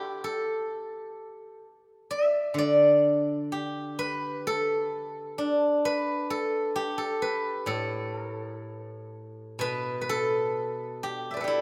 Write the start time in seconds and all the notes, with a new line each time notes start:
Already playing: G4 A4 B4
0.24 A4
2.11 E5
2.54 D3
2.58 D5
3.52 G4
3.99 B4
4.47 A4
5.38 D4
5.85 B4
6.30 A4
6.76 G4
6.98 A4
7.22 B4
7.66 A2 A4
8.17 A#4
8.30 A4
8.45 A#4
8.59 A4
9.59 B2 B4
10.01 B4
10.09 A4
11.03 G4
11.31 D5 E5
11.37 A4 B4
11.44 E4 G4